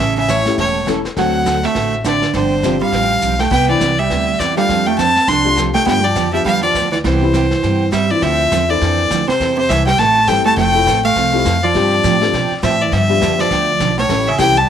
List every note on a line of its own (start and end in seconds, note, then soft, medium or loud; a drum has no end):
0.00 0.46 A1 loud
0.00 0.16 C#3 medium
0.00 0.19 E3 medium
0.00 0.19 G3 medium
0.00 0.19 C#4 medium
0.00 0.19 E4 medium
0.00 0.19 A4 medium
0.00 0.15 E5 medium
0.18 0.30 C#3 medium
0.18 0.32 E5 medium
0.29 0.59 A2 medium
0.29 0.40 E3 medium
0.29 0.40 G3 medium
0.29 0.40 C#4 medium
0.29 0.40 E4 medium
0.29 0.40 A4 medium
0.29 0.59 C#5 medium
0.29 kick soft
0.29 snare medium
0.29 hi-hat pedal medium
0.46 0.57 A3 medium
0.46 0.57 C#4 medium
0.46 0.57 E4 medium
0.46 0.58 G4 medium
0.46 snare soft
0.58 1.05 E1 medium
0.58 0.86 A2 medium
0.58 0.77 E3 medium
0.58 0.78 G3 medium
0.58 0.78 C#4 medium
0.58 0.78 E4 medium
0.58 0.78 A4 medium
0.58 0.86 C#5 medium
0.58 brush sweep soft
0.58 kick soft
0.58 snare soft
0.87 0.98 E3 medium
0.87 0.98 G3 medium
0.87 1.03 A3 medium
0.87 1.03 C#4 medium
0.87 0.99 C#4 medium
0.87 1.03 E4 medium
0.87 0.99 E4 medium
0.87 0.99 A4 medium
0.87 1.04 A4 medium
0.87 kick soft
0.87 snare medium
0.87 hi-hat pedal medium
1.05 snare soft
1.16 1.64 D2 medium
1.16 1.36 D3 soft
1.16 1.65 F#3 medium
1.16 1.98 A3 medium
1.16 1.36 A3 medium
1.16 1.98 C4 medium
1.16 1.37 C4 medium
1.16 1.98 D4 medium
1.16 1.37 F#4 medium
1.16 1.98 F#4 medium
1.16 1.37 A4 medium
1.16 1.67 F#5 medium
1.16 brush sweep soft
1.16 kick soft
1.16 snare soft
1.46 1.57 D3 medium
1.46 1.57 A3 medium
1.46 1.57 C4 medium
1.46 1.57 F#4 medium
1.46 1.57 A4 medium
1.46 kick soft
1.46 snare medium
1.46 hi-hat pedal medium
1.63 1.94 A3 medium
1.63 1.94 E5 medium
1.63 snare soft
1.75 2.22 A1 medium
1.75 1.95 D3 medium
1.75 1.95 A3 medium
1.75 1.95 C4 medium
1.75 1.95 F#4 medium
1.75 1.95 A4 medium
1.75 brush sweep soft
1.75 kick soft
1.75 snare soft
2.04 2.15 D3 medium
2.04 2.33 D3 medium
2.04 2.16 A3 medium
2.04 2.16 C4 medium
2.04 2.16 F#4 medium
2.04 2.16 A4 medium
2.04 2.33 D5 medium
2.04 kick soft
2.04 snare medium
2.04 hi-hat pedal medium
2.22 snare soft
2.34 2.81 G1 medium
2.34 2.53 C3 medium
2.34 2.79 D3 medium
2.34 2.53 F3 medium
2.34 2.54 C4 medium
2.34 2.54 D4 medium
2.34 2.54 G4 medium
2.34 2.78 C5 medium
2.34 brush sweep medium
2.34 kick soft
2.34 snare soft
2.63 2.74 C3 medium
2.63 2.75 F3 medium
2.63 3.07 G3 medium
2.63 3.07 C4 medium
2.63 2.75 C4 medium
2.63 2.75 D4 medium
2.63 3.07 D4 medium
2.63 3.08 F4 medium
2.63 2.75 G4 medium
2.63 kick soft
2.63 snare medium
2.63 hi-hat pedal medium
2.82 3.36 G3 medium
2.82 3.42 F5 medium
2.92 3.18 A1 medium
2.92 3.12 C3 medium
2.92 3.13 F3 medium
2.92 3.13 C4 medium
2.92 3.13 D4 medium
2.92 3.13 G4 medium
2.92 brush sweep soft
2.92 kick soft
2.92 snare soft
3.22 3.47 B1 medium
3.22 3.33 C3 medium
3.22 3.33 F3 medium
3.22 3.33 C4 medium
3.22 3.33 D4 medium
3.22 3.33 G4 medium
3.22 hi-hat pedal medium
3.39 3.52 A3 medium
3.39 3.51 G5 medium
3.39 snare medium
3.51 3.75 C2 medium
3.51 3.71 C3 medium
3.51 3.71 G3 medium
3.51 3.68 B3 medium
3.51 3.71 B3 medium
3.51 3.71 E4 medium
3.51 3.72 G4 medium
3.51 3.68 G5 loud
3.51 brush sweep medium
3.51 kick medium
3.51 snare soft
3.51 crash medium
3.68 3.99 E3 medium
3.68 3.80 B3 medium
3.68 3.80 C4 medium
3.68 3.80 D4 medium
3.68 3.80 E4 medium
3.68 4.00 D5 medium
3.81 4.06 C2 medium
3.81 3.92 C3 medium
3.81 3.92 G3 medium
3.81 3.92 B3 medium
3.81 3.92 E4 medium
3.81 3.92 G4 medium
3.81 kick soft
3.81 snare medium
3.81 hi-hat pedal medium
3.99 4.40 G3 medium
3.99 4.41 E5 medium
4.10 4.35 D2 medium
4.10 4.30 C3 medium
4.10 4.30 G3 medium
4.10 4.30 B3 medium
4.10 4.30 E4 medium
4.10 4.31 G4 medium
4.10 brush sweep soft
4.10 kick soft
4.10 snare soft
4.39 4.65 E2 medium
4.39 4.51 C3 medium
4.39 4.57 E3 medium
4.39 4.51 G3 medium
4.39 4.51 B3 medium
4.39 4.51 E4 medium
4.39 4.51 G4 medium
4.39 4.56 D5 medium
4.39 kick soft
4.39 snare medium
4.39 hi-hat pedal medium
4.56 4.96 G3 medium
4.56 4.87 G3 medium
4.56 4.96 A3 medium
4.56 4.96 D4 medium
4.56 4.97 F4 medium
4.56 4.88 F5 medium
4.56 snare soft
4.69 5.16 F2 medium
4.69 4.89 F3 medium
4.69 4.89 C4 medium
4.69 4.89 D4 medium
4.69 4.89 A4 medium
4.69 brush sweep medium
4.69 kick soft
4.69 snare soft
4.87 4.99 A3 medium
4.87 4.97 G5 medium
4.98 5.09 F3 medium
4.98 5.10 C4 medium
4.98 5.29 C4 medium
4.98 5.10 D4 medium
4.98 5.10 A4 medium
4.98 5.30 A5 loud
4.98 kick soft
4.98 snare medium
4.98 hi-hat pedal medium
5.16 snare soft
5.28 5.75 C2 medium
5.28 5.47 F3 medium
5.28 5.48 C4 medium
5.28 5.48 D4 medium
5.28 5.58 D4 medium
5.28 5.48 A4 medium
5.28 5.57 C6 loud
5.28 brush sweep soft
5.28 kick soft
5.28 snare soft
5.44 5.84 G3 medium
5.44 5.84 A3 medium
5.44 5.84 D4 medium
5.44 5.85 F4 medium
5.57 5.68 F3 medium
5.57 5.68 C4 medium
5.57 5.68 D4 medium
5.57 5.68 A4 medium
5.57 kick soft
5.57 snare medium
5.57 hi-hat pedal medium
5.74 5.86 A3 medium
5.74 5.86 G5 medium
5.74 snare soft
5.86 6.10 G2 medium
5.86 6.06 D3 soft
5.86 6.06 F3 soft
5.86 6.02 G3 medium
5.86 6.02 B3 medium
5.86 6.05 B3 medium
5.86 6.06 B3 medium
5.86 6.03 D4 medium
5.86 6.06 D4 medium
5.86 6.03 F4 medium
5.86 6.07 G4 medium
5.86 6.06 G5 medium
5.86 brush sweep medium
5.86 kick soft
5.86 snare soft
6.04 6.32 F3 medium
6.04 6.33 D5 medium
6.15 6.41 F2 medium
6.15 6.27 D3 medium
6.15 6.27 F3 medium
6.15 6.27 B3 medium
6.15 6.27 D4 medium
6.15 6.27 G4 medium
6.15 kick soft
6.15 snare medium
6.15 hi-hat pedal medium
6.33 6.45 F3 medium
6.33 6.72 G3 medium
6.33 6.73 B3 medium
6.33 6.73 D4 medium
6.33 6.73 G4 medium
6.33 6.45 E5 medium
6.45 6.70 E2 medium
6.45 6.65 D3 medium
6.45 6.65 F3 medium
6.45 6.62 G3 medium
6.45 6.65 B3 medium
6.45 6.65 D4 medium
6.45 6.65 G4 medium
6.45 6.62 F5 loud
6.45 brush sweep soft
6.45 kick soft
6.45 snare soft
6.63 6.91 F3 medium
6.63 6.90 D5 medium
6.75 7.00 D2 medium
6.75 6.86 D3 medium
6.75 6.86 F3 medium
6.75 6.86 B3 medium
6.75 6.86 D4 medium
6.75 6.86 G4 medium
6.75 kick soft
6.75 snare medium
6.75 hi-hat pedal medium
6.92 6.97 E3 medium
6.92 6.98 D5 medium
6.92 snare soft
7.04 7.51 C2 medium
7.04 7.24 C3 medium
7.04 7.89 E3 medium
7.04 7.24 G3 medium
7.04 7.24 B3 medium
7.04 7.24 E4 medium
7.04 7.24 G4 medium
7.04 7.89 C5 medium
7.04 brush sweep medium
7.04 kick soft
7.04 snare soft
7.21 7.32 G3 medium
7.21 7.33 B3 medium
7.21 7.33 C4 medium
7.21 7.33 E4 medium
7.34 7.45 C3 medium
7.34 7.45 G3 medium
7.34 7.45 B3 medium
7.34 7.45 E4 medium
7.34 7.45 G4 medium
7.34 kick soft
7.34 snare medium
7.34 hi-hat pedal medium
7.51 snare soft
7.63 8.10 G2 medium
7.63 7.83 C3 medium
7.63 7.83 G3 medium
7.63 7.83 B3 medium
7.63 7.83 E4 medium
7.63 7.83 G4 medium
7.63 brush sweep soft
7.63 kick soft
7.63 snare soft
7.92 8.03 C3 medium
7.92 8.11 G3 medium
7.92 8.04 G3 medium
7.92 8.04 B3 medium
7.92 8.04 E4 medium
7.92 8.04 G4 medium
7.92 8.12 E5 medium
7.92 kick soft
7.92 snare medium
7.92 hi-hat pedal medium
8.10 8.23 E3 medium
8.10 8.49 F3 medium
8.10 8.49 C4 medium
8.10 8.49 D4 soft
8.10 8.50 E4 medium
8.10 8.24 D5 medium
8.22 8.51 D2 medium
8.22 8.42 D3 soft
8.22 8.70 F3 medium
8.22 8.42 F3 medium
8.22 8.42 C4 medium
8.22 8.42 D4 medium
8.22 8.42 A4 medium
8.22 8.71 E5 loud
8.22 brush sweep medium
8.22 kick soft
8.22 snare medium
8.52 8.80 E2 loud
8.52 8.62 D3 medium
8.52 8.63 F3 medium
8.52 8.63 C4 medium
8.52 8.63 D4 medium
8.52 8.63 A4 medium
8.52 kick soft
8.52 snare medium
8.52 hi-hat pedal medium
8.68 9.29 E3 medium
8.68 9.08 C4 medium
8.68 9.08 D4 medium
8.68 9.08 E4 medium
8.68 9.09 A4 medium
8.68 9.28 D5 medium
8.81 9.10 F2 medium
8.81 9.01 D3 medium
8.81 9.01 F3 medium
8.81 9.01 C4 medium
8.81 9.01 D4 medium
8.81 9.01 A4 medium
8.81 brush sweep medium
8.81 kick soft
8.81 snare soft
9.11 9.27 D2 medium
9.11 9.21 D3 medium
9.11 9.22 F3 medium
9.11 9.22 C4 medium
9.11 9.22 D4 medium
9.11 9.22 A4 medium
9.11 kick soft
9.11 snare medium
9.11 hi-hat pedal medium
9.28 9.55 C3 medium
9.28 9.56 C5 medium
9.28 muted upright bass stroke soft
9.28 snare soft
9.40 9.68 E2 medium
9.40 9.59 E3 medium
9.40 9.59 G3 medium
9.40 9.60 C4 medium
9.40 9.60 E4 medium
9.40 9.60 A4 medium
9.40 brush sweep medium
9.40 kick soft
9.40 snare soft
9.58 9.70 C3 medium
9.58 9.71 C5 loud
9.69 9.98 C2 medium
9.69 9.80 E3 medium
9.69 9.87 E3 medium
9.69 9.80 G3 medium
9.69 9.80 C4 medium
9.69 9.80 E4 medium
9.69 9.81 A4 medium
9.69 9.86 E5 loud
9.69 kick soft
9.69 snare medium
9.69 hi-hat pedal medium
9.86 9.99 G3 medium
9.86 10.00 G5 loud
9.86 snare soft
9.98 10.27 A1 medium
9.98 10.18 E3 medium
9.98 10.18 G3 medium
9.98 10.29 A3 medium
9.98 10.18 C4 medium
9.98 10.19 E4 medium
9.98 10.19 A4 medium
9.98 10.29 A5 loud
9.98 brush sweep medium
9.98 kick soft
9.98 snare soft
10.27 10.56 G1 medium
10.27 10.39 E3 medium
10.27 10.39 G3 medium
10.27 10.45 G3 loud
10.27 10.57 A3 medium
10.27 10.57 C4 medium
10.27 10.39 C4 medium
10.27 10.57 E4 medium
10.27 10.39 E4 medium
10.27 10.57 G4 medium
10.27 10.58 A4 medium
10.27 10.39 A4 medium
10.27 10.45 G5 loud
10.27 kick soft
10.27 snare medium
10.27 hi-hat pedal medium
10.45 10.57 A3 medium
10.45 10.56 A5 loud
10.57 10.86 F1 loud
10.57 10.77 F3 medium
10.57 11.01 A3 medium
10.57 10.77 C4 medium
10.57 10.77 E4 medium
10.57 10.77 A4 medium
10.57 11.01 G5 loud
10.57 brush sweep medium
10.57 kick soft
10.57 snare soft
10.74 10.85 A3 medium
10.74 10.85 C4 medium
10.74 10.85 E4 medium
10.74 10.86 F4 medium
10.74 10.86 A4 medium
10.86 11.15 A1 loud
10.86 10.97 F3 medium
10.86 10.98 C4 medium
10.86 10.98 E4 medium
10.86 10.98 A4 medium
10.86 kick soft
10.86 snare medium
10.86 hi-hat pedal medium
11.04 11.59 A3 medium
11.04 11.65 F5 loud
11.15 11.44 C2 medium
11.15 11.35 F3 medium
11.15 11.35 C4 medium
11.15 11.36 E4 medium
11.15 11.36 A4 medium
11.15 brush sweep medium
11.15 kick soft
11.15 snare soft
11.32 11.44 A3 medium
11.32 11.44 C4 medium
11.32 11.44 E4 medium
11.32 11.44 F4 medium
11.32 11.45 G4 medium
11.45 11.74 F2 medium
11.45 11.56 F3 medium
11.45 11.56 C4 medium
11.45 11.56 E4 medium
11.45 11.56 A4 medium
11.45 kick soft
11.45 snare medium
11.45 hi-hat pedal medium
11.64 12.52 F3 medium
11.64 12.52 D5 loud
11.74 12.03 G2 medium
11.74 11.94 C3 medium
11.74 11.94 F3 medium
11.74 12.18 G3 medium
11.74 12.18 C4 medium
11.74 11.94 C4 soft
11.74 11.94 D4 medium
11.74 12.18 D4 medium
11.74 12.18 F4 medium
11.74 11.94 G4 medium
11.74 12.19 G4 medium
11.74 brush sweep medium
11.74 kick soft
11.74 snare medium
12.03 12.33 A2 medium
12.03 12.15 C3 medium
12.03 12.15 F3 medium
12.03 12.15 C4 medium
12.03 12.15 D4 medium
12.03 12.15 G4 medium
12.03 kick soft
12.03 snare medium
12.03 hi-hat pedal medium
12.20 12.32 G3 medium
12.20 12.32 C4 medium
12.20 12.32 D4 medium
12.20 12.32 F4 medium
12.20 12.33 A4 medium
12.20 snare soft
12.33 12.50 B2 medium
12.33 12.53 C3 medium
12.33 12.53 F3 medium
12.33 12.53 C4 medium
12.33 12.53 D4 medium
12.33 12.53 G4 medium
12.33 brush sweep medium
12.33 kick soft
12.33 snare soft
12.51 muted upright bass stroke soft
12.62 12.91 A2 medium
12.62 12.73 C3 medium
12.62 12.74 F3 medium
12.62 12.81 F3 medium
12.62 12.74 C4 medium
12.62 12.74 D4 medium
12.62 12.74 G4 medium
12.62 12.83 E5 medium
12.62 kick soft
12.62 snare medium
12.62 hi-hat pedal medium
12.81 12.93 E3 medium
12.81 12.94 D5 medium
12.92 13.21 G2 loud
12.92 13.12 D3 medium
12.92 13.12 F3 medium
12.92 13.39 F3 medium
12.92 13.12 B3 medium
12.92 13.12 D4 medium
12.92 13.12 G4 medium
12.92 13.42 E5 loud
12.92 brush sweep medium
12.92 kick soft
12.92 snare medium
13.09 13.48 G3 medium
13.09 13.48 B3 medium
13.09 13.49 D4 medium
13.09 13.49 F4 medium
13.09 13.49 G4 medium
13.21 13.50 F2 medium
13.21 13.33 D3 medium
13.21 13.33 F3 medium
13.21 13.33 B3 medium
13.21 13.33 D4 medium
13.21 13.33 G4 medium
13.21 kick soft
13.21 snare medium
13.21 hi-hat pedal medium
13.39 13.99 F3 medium
13.39 13.98 D5 loud
13.39 snare soft
13.50 13.80 D2 medium
13.50 13.70 D3 medium
13.50 13.70 F3 medium
13.50 13.71 B3 medium
13.50 13.71 D4 medium
13.50 13.71 G4 medium
13.50 brush sweep medium
13.50 kick soft
13.50 snare soft
13.80 14.09 B1 loud
13.80 13.91 D3 medium
13.80 13.91 F3 medium
13.80 13.91 B3 medium
13.80 13.91 D4 medium
13.80 13.92 G4 medium
13.80 kick soft
13.80 snare medium
13.80 hi-hat pedal medium
13.98 14.28 A2 medium
13.98 14.29 C#5 medium
13.98 snare soft
14.08 14.38 A1 medium
14.08 14.29 E3 medium
14.08 14.25 G3 medium
14.08 14.29 G3 medium
14.08 14.25 A3 medium
14.08 14.25 C#4 medium
14.08 14.29 C#4 medium
14.08 14.26 E4 medium
14.08 14.30 E4 medium
14.08 14.26 G4 medium
14.08 14.30 A4 medium
14.08 brush sweep medium
14.08 kick soft
14.08 snare medium
14.28 14.40 C#3 medium
14.28 14.39 E5 medium
14.38 14.68 C2 medium
14.38 14.50 E3 medium
14.38 14.58 E3 medium
14.38 14.55 G3 medium
14.38 14.50 G3 medium
14.38 14.55 A3 medium
14.38 14.55 C#4 medium
14.38 14.50 C#4 medium
14.38 14.50 E4 medium
14.38 14.55 E4 medium
14.38 14.55 G4 medium
14.38 14.50 A4 medium
14.38 14.59 G5 loud
14.38 kick soft
14.38 snare medium
14.38 hi-hat pedal medium
14.57 14.68 G3 medium
14.57 14.69 A5 medium